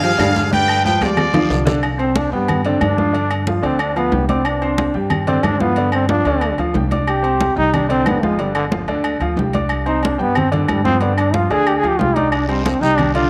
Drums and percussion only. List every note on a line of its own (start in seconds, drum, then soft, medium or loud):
0.04 high conga soft
0.04 low agogo medium
0.19 high conga medium
0.19 low timbale medium
0.19 low agogo loud
0.19 short guiro medium
0.19 claves medium
0.36 high conga medium
0.36 short guiro medium
0.53 high conga medium
0.53 low agogo medium
0.53 long guiro medium
0.68 low agogo loud
0.68 claves medium
0.86 high conga medium
0.86 short guiro medium
1.01 high conga medium
1.01 high timbale medium
1.01 low agogo medium
1.01 short guiro medium
1.17 low conga medium
1.17 high timbale medium
1.17 low agogo loud
1.17 long guiro medium
1.17 claves medium
1.34 low conga medium
1.34 low timbale loud
1.34 low agogo medium
1.50 low timbale medium
1.50 short guiro medium
1.67 low conga loud
1.67 low timbale medium
1.67 low agogo medium
1.67 short guiro medium
1.83 high conga soft
1.83 low agogo loud
1.83 claves medium
1.99 high conga soft
1.99 low agogo medium
2.16 high conga loud
2.16 low agogo medium
2.33 high conga soft
2.48 high conga soft
2.48 low conga medium
2.48 low agogo loud
2.48 claves medium
2.65 high conga soft
2.65 low agogo medium
2.81 high conga medium
2.81 low timbale medium
2.81 low agogo loud
2.81 claves medium
2.98 high conga medium
3.15 high conga soft
3.15 low agogo medium
3.31 high conga soft
3.31 low agogo loud
3.31 claves medium
3.47 high conga medium
3.63 high conga soft
3.63 low agogo medium
3.79 high conga soft
3.79 low agogo loud
3.79 claves medium
3.96 high conga soft
3.96 low agogo medium
4.12 high conga medium
4.12 low timbale medium
4.29 high conga medium
4.29 low agogo medium
4.45 high conga soft
4.45 low agogo loud
4.45 claves medium
4.62 high conga soft
4.62 low agogo medium
4.78 high conga loud
4.78 low agogo medium
4.94 high conga soft
5.10 high conga soft
5.10 low conga medium
5.10 low agogo loud
5.10 claves medium
5.27 high conga soft
5.27 low conga medium
5.27 low agogo medium
5.43 high conga medium
5.43 low timbale medium
5.43 low agogo loud
5.43 claves medium
5.60 high conga medium
5.76 high conga soft
5.76 low agogo medium
5.92 high conga soft
5.92 low agogo loud
5.92 claves medium
6.09 high conga medium
6.25 high conga soft
6.25 low agogo medium
6.41 high conga soft
6.41 low agogo loud
6.41 claves medium
6.58 high conga soft
6.58 low agogo medium
6.74 high conga medium
6.74 low timbale medium
6.91 high conga medium
6.91 low agogo medium
7.07 high conga soft
7.07 low agogo loud
7.07 claves medium
7.24 high conga soft
7.24 low agogo medium
7.41 high conga medium
7.41 low agogo medium
7.57 high conga soft
7.74 high conga soft
7.74 low conga medium
7.74 low agogo loud
7.74 claves medium
7.90 high conga soft
7.90 low agogo medium
8.06 high conga medium
8.06 low timbale medium
8.06 low agogo loud
8.06 claves medium
8.23 high conga medium
8.39 high conga soft
8.39 low agogo medium
8.55 high conga soft
8.55 low agogo loud
8.55 claves medium
8.72 high conga medium
8.88 high conga soft
8.88 low agogo medium
9.04 high conga soft
9.04 low agogo loud
9.04 claves medium
9.21 high conga soft
9.21 low agogo medium
9.37 high conga medium
9.37 low timbale medium
9.53 high conga medium
9.53 low agogo medium
9.69 high conga soft
9.69 low agogo loud
9.69 claves medium
9.86 high conga soft
9.86 low agogo medium
10.03 high conga medium
10.03 low agogo medium
10.21 high conga soft
10.35 high conga soft
10.35 low conga medium
10.35 low agogo loud
10.35 claves medium
10.52 high conga soft
10.52 low conga medium
10.52 low agogo medium
10.68 high conga medium
10.68 low agogo loud
10.68 claves medium
10.85 high conga medium
11.01 high conga soft
11.01 low agogo medium
11.18 high conga soft
11.18 low agogo loud
11.18 claves medium
11.34 high conga medium
11.51 high conga soft
11.51 low agogo medium
11.67 high conga soft
11.67 low agogo loud
11.67 claves medium
11.83 high conga soft
11.83 low agogo medium
11.99 high conga medium
11.99 low timbale medium
12.16 high conga medium
12.16 low agogo medium
12.32 high conga soft
12.32 low agogo loud
12.32 long guiro medium
12.32 claves medium
12.49 high conga soft
12.49 low agogo medium
12.66 high conga medium
12.66 low agogo medium
12.66 short guiro medium
12.83 high conga soft
12.83 short guiro medium
12.98 high conga soft
12.98 low conga medium
12.98 low agogo loud
12.98 long guiro medium
12.98 claves medium
13.15 high conga soft
13.15 low agogo medium